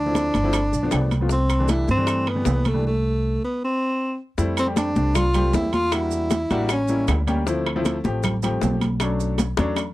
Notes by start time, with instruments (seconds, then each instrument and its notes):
Already playing: upright bass D2, tenor saxophone D4
0.06 grand piano F3 A3 C4 E4
0.15 high bongo, high conga, high timbale, low timbale, maracas
0.34 upright bass G1, high bongo, high conga, high timbale, maracas
0.44 grand piano F3 A3 C4 E4
0.53 high bongo, high conga, high timbale, claves, maracas
0.72 upright bass B1, grand piano D5, high bongo, high conga, maracas
0.83 grand piano F3 A3 B3 D4
0.91 upright bass C2, grand piano G5, high bongo, low bongo, high conga, high timbale, low timbale, claves, maracas
1.11 high conga, high timbale, maracas
1.21 grand piano F3 A3 B3 F4
1.29 tenor saxophone C4, high bongo, high conga, maracas
1.49 high bongo, high conga, high timbale, claves, maracas
1.59 grand piano E3 G3 A3 D4
1.68 tenor saxophone E4, high bongo, high conga, high timbale, low timbale, maracas
1.88 upright bass G2, tenor saxophone C4, high bongo, high conga, maracas
1.97 grand piano E3 G3 A3 D4
2.07 high bongo, high conga, high timbale, claves, maracas
2.27 tenor saxophone B3, high bongo, high conga, high timbale
2.35 grand piano E3 G3 A3 B3
2.45 upright bass C2, high bongo, low bongo, high conga, low timbale, maracas
2.65 tenor saxophone A3, high conga, high timbale, maracas
2.74 grand piano E3 G3 A3 D4
2.87 tenor saxophone A3
3.44 tenor saxophone B3
3.64 tenor saxophone C4
4.38 upright bass F2, grand piano G3 A3 C4 E4, high bongo, high conga, maracas
4.57 tenor saxophone C4, high bongo, high conga, high timbale, claves, maracas
4.67 grand piano G3 A3 C4 G4
4.76 tenor saxophone D4, high bongo, high conga, high timbale, low timbale, maracas
4.95 upright bass C2, grand piano G3 A3 C4 D4, high bongo, high conga, maracas
5.15 tenor saxophone F4, high bongo, high conga, low conga, high timbale, claves, maracas
5.34 grand piano G3 A3 C4 G4, high bongo, high conga, low conga, high timbale, maracas
5.53 upright bass E2, tenor saxophone E4, high bongo, low bongo, high conga, low timbale, maracas
5.73 tenor saxophone F4, high conga, high timbale, maracas
5.92 grand piano G3 A#3 D4 F#4, tenor saxophone E4, high bongo, high conga, high timbale, claves, maracas
6.11 high bongo, high conga, maracas
6.30 high bongo, high conga, high timbale, low timbale, maracas
6.50 upright bass A1, grand piano G3 A#3 D4 F#4, high bongo, high conga, high timbale, maracas
6.69 tenor saxophone C#4, high bongo, high conga, high timbale, claves, maracas
6.88 grand piano G3 A#3 C#4 E4, high bongo, high conga, maracas
7.08 upright bass D2, high bongo, low bongo, high conga, high timbale, low timbale, claves, maracas
7.27 grand piano G3 A#3 C#4 G4, high conga, high timbale, maracas
7.46 grand piano F3 A3 C4 E4, high bongo, maracas
7.66 high bongo, high conga, high timbale, claves
7.76 grand piano F3 A3 C4 E4
7.85 high bongo, high conga, high timbale, low timbale, maracas
8.04 upright bass A1, grand piano F3 A3 C4 G4, high bongo, high conga, maracas
8.23 high bongo, high conga, low conga, high timbale, claves, maracas
8.43 grand piano F3 A3 C4 G4, high bongo, high conga, low conga, high timbale, maracas
8.61 upright bass B1, high bongo, low bongo, high conga, low timbale, maracas
8.81 high conga, high timbale, maracas
9.00 grand piano F#3 A3 C#4 D4, high bongo, high conga, high timbale, claves, maracas
9.19 high bongo, high conga, maracas
9.38 high bongo, high conga, high timbale, low timbale, maracas
9.57 upright bass E2, grand piano F#3 A3 C#4 D4, high bongo, high conga, high timbale, maracas
9.76 high bongo, high conga, high timbale, claves, maracas